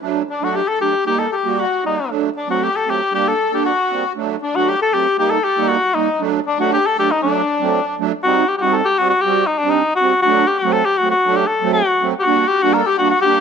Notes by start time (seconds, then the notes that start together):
0.02 F#3 A3 D4
0.30 D4
0.41 F#3 A3 D4 F#4
0.52 G4 A4
0.68 A4
0.81 F#3 A3 D4 G4
1.05 G3 A#3 D#4 G4
1.19 A4
1.25 A#4
1.30 G4 A4
1.35 G4
1.44 G3 A#3 F#4
1.59 F#4
1.84 G3 A#3 D#4
2.09 F#3 A3 D4
2.36 D4
2.48 F#3 A3 C4 F#4
2.62 G4
2.76 A4
2.86 F#3 A3 C4 G4
3.12 G3 A#3 D4 G4
3.26 A4
3.51 G3 A#3 D4 G4
3.64 F#4
3.91 G3 A#3 C4
4.16 F#3 A3 D4
4.42 D4
4.54 F#3 A3 D4 F#4
4.67 G4
4.81 A4
4.93 F#3 A3 C4 G4
5.18 G3 A#3 D#4 G4
5.30 A4
5.44 G4
5.57 G3 A#3 D#4
5.68 F#4
5.94 G3 A#3 D#4
6.20 F#3 A3 D4
6.46 D4
6.57 F#3 A3 D4 F#4
6.72 G4
6.85 A4
6.97 F#3 A3 D4 G4
7.11 D#4
7.15 D4 D#4
7.22 F#3 A3 D4
7.61 F#3 A3 C4
7.99 F#3 A3 D4
8.23 G3 C4 D#4 F#4
8.48 G4
8.58 F#4 G4
8.62 G3 C4 D#4
8.72 A4
8.85 G4
8.98 G3 C4 F#4
9.10 F#4
9.21 G3 C4 F#4 G4
9.47 D#4
9.58 D4
9.63 G3 C4 D4
9.70 D#4
9.96 F#4
10.01 G3 C4 F#4
10.22 F#3 A3 D4 F#4
10.48 G4
10.59 F#4
10.63 F#3 A3 C4
10.73 A4
10.86 G4
10.98 F#3 A3 C4 F#4
11.11 F#4
11.25 F#3 A3 D4
11.36 G4
11.48 A4
11.62 F#3 A3 C4
11.73 F#4
12.01 F#3 A3 C4
12.19 F#4 G4
12.26 G3 A#3 D4 F#4
12.48 G4
12.62 G3 A#3 D4 F#4
12.73 A4 A#4
12.87 G4
12.98 G3 A#3 D4 F#4
13.10 F#4
13.21 G3 A#3 G4
13.26 D4